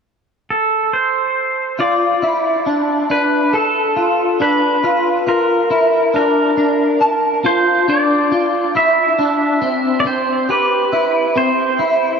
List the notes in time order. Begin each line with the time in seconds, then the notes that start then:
0.50 A4
0.93 C5
1.79 F4 D5
2.22 E4
2.66 D4
3.10 D4 B4
3.53 A4
3.96 F4
4.40 D4 B4
4.84 F4
5.27 F4 A#4
5.70 E4
6.14 D4 A#4
6.57 D4
7.01 A5
7.44 F4 C5
7.88 D4 D5
8.31 F4
8.75 E4 E5
9.18 D4
9.62 C4
10.00 D5
10.05 C4 C5
10.49 G4 B4
10.92 E4
11.36 C4 C5
11.79 E4